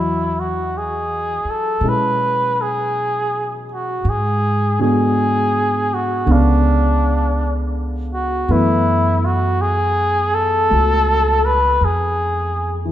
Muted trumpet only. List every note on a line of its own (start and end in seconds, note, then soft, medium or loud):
0.00 0.41 E4 medium
0.39 0.79 F#4 medium
0.77 1.52 G#4 medium
1.50 1.90 A4 medium
1.88 2.63 B4 medium
2.61 3.59 G#4 medium
3.73 4.11 F#4 medium
4.09 4.81 G#4 medium
4.82 5.96 G#4 medium
5.94 6.33 F#4 medium
6.32 7.78 D4 medium
8.14 8.53 F#4 medium
8.52 9.27 E4 medium
9.25 9.63 F#4 medium
9.61 10.36 G#4 medium
10.34 11.46 A4 medium
11.45 11.86 B4 medium
11.85 12.75 G#4 medium